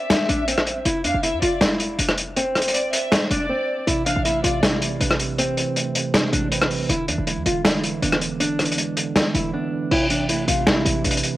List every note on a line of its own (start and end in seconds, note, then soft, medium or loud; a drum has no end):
0.00 0.25 C4 loud
0.00 0.82 E5 medium
0.10 finger snap medium
0.10 snare loud
0.10 closed hi-hat medium
0.29 0.83 A1 loud
0.29 0.44 D4 medium
0.29 closed hi-hat medium
0.48 0.83 C4 medium
0.48 closed hi-hat medium
0.58 cross-stick loud
0.67 closed hi-hat medium
0.85 1.06 F1 loud
0.85 1.00 E4 loud
0.85 closed hi-hat medium
1.04 1.14 F2 loud
1.04 1.19 D4 medium
1.04 1.22 F5 medium
1.04 closed hi-hat medium
1.14 1.35 F1 loud
1.23 1.38 E4 medium
1.23 1.41 E5 medium
1.23 closed hi-hat medium
1.33 1.42 F2 loud
1.42 1.96 F1 loud
1.42 1.57 F4 medium
1.42 1.60 D5 medium
1.42 closed hi-hat medium
1.61 1.96 E4 medium
1.61 finger snap medium
1.61 snare loud
1.61 closed hi-hat medium
1.80 closed hi-hat medium
1.99 3.08 F1 loud
1.99 2.14 D4 medium
1.99 closed hi-hat medium
2.09 cross-stick loud
2.18 closed hi-hat medium
2.36 3.27 C4 loud
2.36 closed hi-hat medium
2.55 2.73 C5 medium
2.55 cross-stick medium
2.55 closed hi-hat soft
2.62 closed hi-hat medium
2.68 closed hi-hat medium
2.74 2.92 D5 medium
2.74 closed hi-hat medium
2.93 3.29 E5 medium
2.93 closed hi-hat loud
3.12 finger snap medium
3.12 snare loud
3.12 closed hi-hat medium
3.31 3.50 F1 loud
3.31 3.46 D4 medium
3.31 3.84 D5 medium
3.31 closed hi-hat medium
3.49 3.85 C4 medium
3.87 4.15 A1 loud
3.87 4.43 C3 medium
3.87 4.02 E4 loud
3.87 closed hi-hat medium
4.06 4.80 E3 medium
4.06 4.21 D4 medium
4.06 4.24 F5 medium
4.06 closed hi-hat medium
4.16 4.43 A1 loud
4.25 5.19 A3 medium
4.25 4.40 E4 medium
4.25 4.43 E5 medium
4.25 closed hi-hat medium
4.44 4.98 A1 loud
4.44 4.62 C3 medium
4.44 4.59 F4 medium
4.44 4.62 D5 medium
4.44 closed hi-hat medium
4.63 5.18 C3 medium
4.63 4.98 E4 medium
4.63 finger snap medium
4.63 snare loud
4.63 closed hi-hat medium
4.82 5.56 E3 medium
4.82 closed hi-hat medium
5.00 5.65 A1 loud
5.00 5.15 D4 medium
5.00 5.95 B4 medium
5.00 closed hi-hat medium
5.11 cross-stick loud
5.19 5.37 C3 medium
5.19 closed hi-hat medium
5.38 5.94 C3 medium
5.38 6.29 C4 loud
5.38 closed hi-hat medium
5.57 6.32 E3 medium
5.57 closed hi-hat medium
5.76 6.70 A3 medium
5.76 closed hi-hat medium
5.95 6.13 C3 medium
5.95 closed hi-hat medium
6.14 6.69 C3 medium
6.14 finger snap medium
6.14 snare loud
6.14 closed hi-hat medium
6.33 6.87 A1 loud
6.33 6.89 E3 medium
6.33 6.47 D4 medium
6.33 closed hi-hat medium
6.51 6.87 C4 medium
6.51 6.89 B4 medium
6.51 closed hi-hat medium
6.61 cross-stick loud
6.70 6.89 C3 medium
6.70 open hi-hat medium
6.89 7.10 E1 loud
6.89 7.45 D3 medium
6.89 7.04 E4 loud
6.89 closed hi-hat medium
7.08 7.18 E2 loud
7.08 7.82 E3 medium
7.08 7.23 D4 medium
7.08 closed hi-hat medium
7.18 7.39 E1 loud
7.27 8.21 G#3 medium
7.27 7.42 E4 medium
7.27 closed hi-hat medium
7.37 7.45 E2 loud
7.46 8.00 E1 loud
7.46 7.63 D3 medium
7.46 7.61 F4 medium
7.46 closed hi-hat medium
7.65 8.20 D3 medium
7.65 8.00 E4 medium
7.65 finger snap medium
7.65 snare loud
7.65 closed hi-hat medium
7.84 8.58 E3 medium
7.84 closed hi-hat medium
8.02 9.12 E1 loud
8.02 8.97 B3 medium
8.02 8.17 D4 medium
8.02 closed hi-hat medium
8.12 cross-stick loud
8.21 8.39 D3 medium
8.21 closed hi-hat medium
8.40 8.96 D3 medium
8.40 9.31 D4 loud
8.40 closed hi-hat medium
8.59 9.33 E3 medium
8.59 cross-stick medium
8.59 closed hi-hat soft
8.65 closed hi-hat medium
8.72 closed hi-hat medium
8.78 9.72 G#3 medium
8.78 closed hi-hat medium
8.97 9.15 D3 medium
8.97 closed hi-hat loud
9.16 9.71 D3 medium
9.16 finger snap medium
9.16 snare loud
9.16 closed hi-hat medium
9.34 9.53 E1 loud
9.34 9.91 E3 medium
9.34 9.50 E4 medium
9.34 closed hi-hat medium
9.53 9.91 B3 loud
9.53 9.89 D4 medium
9.72 9.91 D3 medium
9.91 10.46 A1 loud
9.91 10.47 C3 medium
9.91 10.06 E4 loud
9.91 crash loud
10.10 10.84 E3 medium
10.10 10.25 D4 medium
10.10 closed hi-hat medium
10.29 11.23 A3 medium
10.29 10.44 E4 loud
10.29 closed hi-hat medium
10.48 10.84 A1 loud
10.48 10.65 C3 medium
10.48 10.63 F4 medium
10.48 closed hi-hat medium
10.67 11.22 C3 medium
10.67 11.02 E4 medium
10.67 finger snap loud
10.67 snare loud
10.85 11.04 A1 loud
10.85 11.37 E3 medium
10.85 closed hi-hat medium
11.04 11.23 A1 loud
11.04 11.19 D4 medium
11.04 11.37 B4 medium
11.04 closed hi-hat medium
11.11 closed hi-hat medium
11.17 closed hi-hat medium
11.23 11.37 C3 medium
11.23 closed hi-hat medium